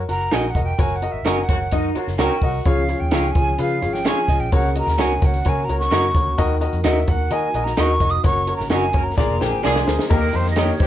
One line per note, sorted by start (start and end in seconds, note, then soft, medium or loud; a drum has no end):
0.09 0.27 F#1 medium
0.09 0.24 F#4 medium
0.09 0.24 A#4 medium
0.09 0.25 F#5 medium
0.09 0.35 A#5 loud
0.09 closed hi-hat medium
0.31 0.50 A#1 medium
0.31 0.44 D#4 medium
0.31 0.47 F#4 medium
0.31 0.44 F#4 medium
0.31 0.48 A#4 medium
0.31 0.45 A#4 loud
0.31 0.48 D#5 medium
0.31 0.45 D#5 loud
0.31 0.52 G#5 loud
0.31 snare loud
0.31 closed hi-hat medium
0.50 0.64 F#5 medium
0.55 0.73 F1 medium
0.55 0.71 F#4 medium
0.55 0.71 A#4 medium
0.55 0.71 D#5 medium
0.55 kick medium
0.55 closed hi-hat medium
0.64 0.82 G5 medium
0.78 1.06 F#1 loud
0.78 0.94 F#4 medium
0.78 0.94 A#4 medium
0.78 0.95 C#5 loud
0.78 0.97 G#5 loud
0.78 kick loud
0.78 closed hi-hat medium
0.96 1.13 F#5 medium
1.02 1.18 F#4 medium
1.02 1.18 A#4 medium
1.02 1.18 D#5 medium
1.02 closed hi-hat medium
1.12 1.23 G#1 medium
1.12 1.28 E5 medium
1.25 1.44 F#1 medium
1.25 1.37 C#4 medium
1.25 1.38 F#4 medium
1.25 1.41 F#4 medium
1.25 1.38 A#4 medium
1.25 1.41 A#4 medium
1.25 1.38 C#5 medium
1.25 1.41 D#5 medium
1.25 1.45 G#5 medium
1.25 snare loud
1.25 closed hi-hat medium
1.43 1.89 F#5 medium
1.49 1.67 F#1 medium
1.49 1.56 C#3 medium
1.49 1.56 A#3 medium
1.49 1.56 F#4 medium
1.49 1.65 F#4 medium
1.49 1.65 A#4 medium
1.49 1.65 C#5 medium
1.49 kick loud
1.49 closed hi-hat medium
1.72 1.90 F#2 medium
1.72 1.82 C#3 medium
1.72 1.82 A#3 medium
1.72 1.95 D#4 medium
1.72 1.82 F#4 medium
1.72 1.88 F#4 medium
1.72 1.88 A#4 medium
1.72 1.88 D#5 loud
1.72 kick medium
1.72 closed hi-hat medium
1.95 2.05 C#3 medium
1.95 2.05 A#3 medium
1.95 2.17 F4 medium
1.95 2.05 F#4 loud
1.95 2.11 F#4 medium
1.95 2.11 A#4 medium
1.95 2.12 C#5 medium
1.95 muted fingered electric bass stroke soft
1.95 closed hi-hat medium
2.07 2.16 F#1 medium
2.07 snare soft
2.18 2.28 C#2 medium
2.18 2.52 F#3 loud
2.18 2.31 C#4 medium
2.18 2.52 C#4 medium
2.18 2.31 F#4 loud
2.18 2.34 F#4 medium
2.18 2.63 F#4 medium
2.18 2.52 A#4 medium
2.18 2.35 A#4 medium
2.18 2.31 A#4 loud
2.18 2.35 C#5 medium
2.18 2.32 C#5 medium
2.18 2.42 G5 medium
2.18 snare loud
2.18 closed hi-hat medium
2.42 2.60 C2 medium
2.42 2.58 F#4 medium
2.42 2.58 A#4 medium
2.42 2.58 D#5 medium
2.42 2.69 F#5 medium
2.42 kick medium
2.42 open hi-hat medium
2.65 2.92 C#2 medium
2.65 3.32 C#3 medium
2.65 4.50 F3 medium
2.65 4.50 C#4 medium
2.65 2.81 F4 medium
2.65 4.50 G#4 medium
2.65 2.81 G#4 medium
2.65 2.81 C#5 loud
2.65 3.01 F5 medium
2.65 kick loud
2.65 closed hi-hat medium
2.88 3.04 F4 medium
2.88 3.04 G#4 medium
2.88 3.05 C#5 medium
2.88 closed hi-hat medium
3.00 3.10 D#2 medium
3.00 3.33 G5 medium
3.11 3.30 C#2 medium
3.11 3.24 C#4 medium
3.11 3.27 F4 medium
3.11 3.24 F4 medium
3.11 3.28 G#4 medium
3.11 3.25 G#4 medium
3.11 3.28 C#5 medium
3.11 3.25 C#5 medium
3.11 snare loud
3.11 closed hi-hat medium
3.31 3.51 F4 medium
3.31 3.61 G#5 medium
3.31 closed hi-hat medium
3.35 3.54 C#2 medium
3.35 3.51 G#4 medium
3.35 3.51 C#5 medium
3.35 kick loud
3.58 3.84 C#3 loud
3.58 3.74 F4 medium
3.58 3.74 G#4 medium
3.58 3.74 B4 medium
3.58 3.95 F5 medium
3.58 closed hi-hat medium
3.82 4.09 G#1 medium
3.82 3.98 F4 medium
3.82 3.98 G#4 medium
3.82 3.98 C#5 medium
3.82 closed hi-hat medium
3.93 4.07 G5 medium
3.93 snare soft
4.05 4.17 C#4 loud
4.05 4.18 F4 medium
4.05 4.21 F4 medium
4.05 4.21 G#4 medium
4.05 4.18 G#4 loud
4.05 4.21 C#5 medium
4.05 4.18 C#5 loud
4.05 4.42 G#5 medium
4.05 snare loud
4.05 closed hi-hat medium
4.28 4.38 C#2 medium
4.28 4.44 F4 medium
4.28 4.45 G#4 medium
4.28 4.45 D#5 medium
4.28 kick medium
4.28 closed hi-hat medium
4.40 4.49 A#1 medium
4.40 4.54 G5 medium
4.52 4.79 C#2 loud
4.52 5.18 C#3 medium
4.52 6.37 C#3 medium
4.52 10.07 A#3 medium
4.52 4.68 F#4 medium
4.52 9.14 F#4 medium
4.52 4.68 A#4 medium
4.52 4.68 C#5 loud
4.52 4.75 F#5 medium
4.52 kick loud
4.52 closed hi-hat medium
4.75 4.91 F#4 medium
4.75 4.91 A#4 medium
4.75 4.91 D#5 medium
4.75 5.02 A#5 loud
4.75 closed hi-hat medium
4.87 4.98 D#2 medium
4.87 snare soft
4.87 closed hi-hat medium
4.98 5.16 C#2 medium
4.98 5.11 C#4 medium
4.98 5.14 F#4 medium
4.98 5.11 F#4 medium
4.98 5.14 A#4 medium
4.98 5.11 A#4 medium
4.98 5.14 C#5 medium
4.98 5.11 C#5 medium
4.98 5.27 G#5 loud
4.98 snare loud
4.98 closed hi-hat medium
5.21 5.40 C#2 medium
5.21 5.37 F#4 medium
5.21 5.38 A#4 medium
5.21 5.38 C#5 medium
5.21 5.50 F#5 medium
5.21 kick loud
5.21 closed hi-hat medium
5.34 closed hi-hat medium
5.45 5.64 C#3 loud
5.45 5.61 F#4 medium
5.45 5.61 A#4 medium
5.45 5.61 C#5 loud
5.45 5.66 G#5 medium
5.45 kick medium
5.45 closed hi-hat medium
5.64 5.78 A#5 medium
5.69 5.87 C#2 loud
5.69 5.84 F#4 medium
5.69 5.85 A#4 medium
5.69 5.85 C#5 medium
5.69 closed hi-hat medium
5.79 6.44 C#6 loud
5.79 snare soft
5.91 6.10 F#2 loud
5.91 6.04 C#4 loud
5.91 6.04 F#4 medium
5.91 6.08 F#4 medium
5.91 6.04 A#4 loud
5.91 6.08 A#4 medium
5.91 6.05 C#5 loud
5.91 6.08 D#5 medium
5.91 snare loud
5.91 closed hi-hat medium
6.15 6.33 D2 loud
6.15 6.31 F#4 medium
6.15 6.31 A#4 medium
6.15 6.31 C#5 medium
6.15 kick medium
6.15 closed hi-hat medium
6.38 6.65 D#2 loud
6.38 7.04 D#3 medium
6.38 8.23 D#3 medium
6.38 6.54 F#4 loud
6.38 6.54 A#4 loud
6.38 6.54 D#5 loud
6.38 kick loud
6.38 closed hi-hat loud
6.61 6.77 F#4 medium
6.61 6.77 A#4 medium
6.61 6.77 D#5 medium
6.61 closed hi-hat medium
6.73 6.82 F2 medium
6.73 closed hi-hat medium
6.84 7.03 D#2 medium
6.84 6.97 D#4 medium
6.84 7.00 F#4 medium
6.84 6.97 F#4 medium
6.84 7.01 A#4 medium
6.84 6.97 A#4 medium
6.84 7.01 D#5 medium
6.84 6.98 D#5 medium
6.84 7.12 E5 medium
6.84 snare loud
6.84 closed hi-hat loud
7.07 7.26 D#2 medium
7.07 7.24 F#4 medium
7.07 7.24 A#4 medium
7.07 7.24 F#5 medium
7.07 7.34 F#5 loud
7.07 kick loud
7.07 closed hi-hat medium
7.31 7.49 D#3 medium
7.31 7.47 F#4 loud
7.31 7.47 A#4 medium
7.31 7.47 D#5 loud
7.31 7.65 G#5 medium
7.31 closed hi-hat medium
7.54 7.73 A#1 medium
7.54 7.70 F#4 medium
7.54 7.71 A#4 medium
7.54 7.71 D#5 medium
7.54 closed hi-hat medium
7.64 7.81 A#5 loud
7.64 snare soft
7.77 7.96 D#2 loud
7.77 7.90 D#4 medium
7.77 7.93 F#4 medium
7.77 7.90 F#4 loud
7.77 7.93 A#4 medium
7.77 7.90 A#4 loud
7.77 7.94 D#5 loud
7.77 7.91 D#5 medium
7.77 8.12 C#6 loud
7.77 snare loud
7.77 closed hi-hat medium
8.00 8.19 F1 loud
8.00 8.17 F#4 medium
8.00 8.17 A#4 medium
8.00 8.17 D#5 medium
8.00 kick medium
8.00 closed hi-hat medium
8.11 8.25 D#6 loud
8.23 8.51 F#1 medium
8.23 9.16 C#3 medium
8.23 8.40 F#4 loud
8.23 8.40 A#4 medium
8.23 8.40 C#5 loud
8.23 8.54 C#6 loud
8.23 kick loud
8.23 closed hi-hat medium
8.47 8.63 F#4 medium
8.47 8.63 A#4 medium
8.47 8.63 C#5 medium
8.47 closed hi-hat medium
8.56 8.69 G#1 medium
8.56 8.71 A#5 loud
8.56 snare soft
8.70 8.89 F#1 loud
8.70 8.83 C#4 medium
8.70 8.86 F#4 medium
8.70 8.83 F#4 medium
8.70 8.86 A#4 medium
8.70 8.84 A#4 medium
8.70 8.84 C#5 medium
8.70 8.87 D#5 medium
8.70 9.05 G#5 loud
8.70 snare loud
8.70 closed hi-hat medium
8.93 9.12 F#1 medium
8.93 9.02 F#3 medium
8.93 9.02 C#4 loud
8.93 9.10 F#4 medium
8.93 9.10 A#4 medium
8.93 9.02 A#4 medium
8.93 9.10 C#5 medium
8.93 kick loud
8.93 closed hi-hat medium
9.04 9.18 A#5 medium
9.17 9.27 A#1 loud
9.17 9.83 A#2 medium
9.17 10.09 D3 medium
9.17 9.28 F3 medium
9.17 9.28 D4 medium
9.17 9.40 F4 medium
9.17 10.09 G#4 medium
9.17 9.33 G#4 loud
9.17 9.28 G#4 medium
9.17 9.33 A#4 medium
9.17 9.33 D5 loud
9.17 9.50 A#5 loud
9.17 kick medium
9.17 snare medium
9.29 9.38 F1 medium
9.40 9.50 A#1 loud
9.40 9.51 F3 medium
9.40 9.51 D4 medium
9.40 9.63 G4 medium
9.40 9.56 G#4 medium
9.40 9.51 G#4 loud
9.40 9.56 A#4 medium
9.40 9.56 C5 medium
9.40 snare medium
9.49 9.62 G#1 medium
9.49 9.64 G#5 medium
9.63 9.82 C2 medium
9.63 9.97 F3 loud
9.63 9.76 A#3 medium
9.63 9.97 D4 loud
9.63 9.76 F4 medium
9.63 10.08 F4 medium
9.63 9.79 G#4 medium
9.63 9.97 G#4 loud
9.63 9.77 G#4 loud
9.63 10.09 G#4 medium
9.63 9.79 A#4 medium
9.63 9.79 D5 medium
9.63 9.77 D5 loud
9.63 snare medium
9.76 snare medium
9.86 9.96 D2 medium
9.86 10.02 G#4 medium
9.86 10.02 A#4 medium
9.86 10.03 C5 medium
9.86 snare loud
9.99 snare medium
10.09 10.28 D#2 loud
10.09 10.76 D#3 medium
10.09 10.21 D#3 medium
10.09 10.87 D#3 medium
10.09 10.26 A#3 loud
10.09 10.87 A#3 medium
10.09 10.21 A#3 medium
10.09 10.26 D#4 medium
10.09 10.26 G4 medium
10.09 10.87 G4 medium
10.09 10.21 G4 medium
10.09 10.26 A#4 loud
10.09 10.37 A#4 loud
10.09 kick loud
10.09 crash loud
10.33 10.70 F2 loud
10.33 10.49 A#3 medium
10.33 10.49 D#4 medium
10.33 10.49 G4 medium
10.33 10.49 A#4 medium
10.33 10.50 C5 loud
10.33 closed hi-hat medium
10.46 snare soft
10.51 10.60 D#5 medium
10.56 10.72 A#3 medium
10.56 10.69 D#4 medium
10.56 10.72 D#4 medium
10.56 10.72 G4 medium
10.56 10.69 G4 medium
10.56 10.69 A#4 medium
10.56 10.73 C#5 medium
10.56 10.87 C#5 loud
10.56 10.70 D#5 loud
10.56 snare loud
10.56 closed hi-hat loud
10.80 10.87 G2 medium
10.80 10.87 D#3 loud
10.80 10.87 A#3 medium
10.80 10.87 D#4 medium
10.80 10.87 G4 medium
10.80 10.87 G4 loud
10.80 10.87 C5 medium
10.80 kick loud
10.80 closed hi-hat medium